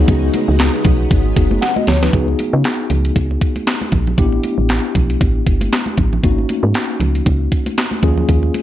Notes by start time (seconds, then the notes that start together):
Already playing: C#3 F#3 G#3 B3 D#4 F#4 G#4
0.08 C#2, kick, closed hi-hat
0.34 closed hi-hat, high conga
0.48 C#2
0.59 snare, clap, closed hi-hat, muted conga
0.85 B1, kick, closed hi-hat, high conga, low conga
1.11 G#1, kick, closed hi-hat
1.36 F#1 B3 D#4 F#4 G#4, kick, closed hi-hat
1.51 high conga
1.62 F#5, snare, closed hi-hat, muted conga
1.76 F#4 D#5, muted conga, high conga
1.87 D2 C#5, snare, open hi-hat, low conga
2.02 D#4 B4, snare, low conga
2.13 C#2 B3 D#4 F#4 G#4, kick, closed hi-hat, muted conga
2.28 muted conga
2.39 closed hi-hat, high conga
2.53 C#3
2.64 snare, clap, closed hi-hat, muted conga
2.90 C#2, closed hi-hat, high conga, low conga
3.05 closed hi-hat
3.16 C#2, kick, closed hi-hat, muted conga
3.31 muted conga
3.41 kick, closed hi-hat
3.56 closed hi-hat, high conga
3.67 snare, clap, closed hi-hat
3.81 muted conga, high conga
3.92 A#1, kick, closed hi-hat, low conga
4.07 low conga
4.18 A1 B3 D4 E4 G4, kick, closed hi-hat, muted conga
4.32 muted conga
4.44 closed hi-hat, high conga
4.58 A1
4.69 snare, clap, closed hi-hat, muted conga
4.95 B1, kick, closed hi-hat, high conga, low conga
5.10 closed hi-hat
5.21 A1, kick, closed hi-hat, muted conga
5.46 G1, kick, closed hi-hat
5.61 closed hi-hat, high conga
5.73 snare, clap, closed hi-hat
5.86 muted conga, high conga
5.97 A1, kick, closed hi-hat, low conga
6.13 low conga
6.23 G#1 A#3 C4 D#4 F#4, kick, closed hi-hat, muted conga
6.30 C#4
6.38 muted conga
6.49 closed hi-hat, high conga
6.63 G#2
6.74 snare, clap, closed hi-hat, muted conga
7.00 C#2, closed hi-hat, high conga, low conga
7.15 closed hi-hat
7.26 C#2, kick, closed hi-hat
7.52 kick, closed hi-hat
7.66 closed hi-hat, high conga
7.78 snare, clap, closed hi-hat, muted conga
7.91 muted conga, high conga
8.03 D#2 A#3 C#4 F4 G#4, kick, closed hi-hat, low conga
8.18 low conga
8.29 D#2, kick, closed hi-hat
8.43 muted conga
8.54 closed hi-hat, high conga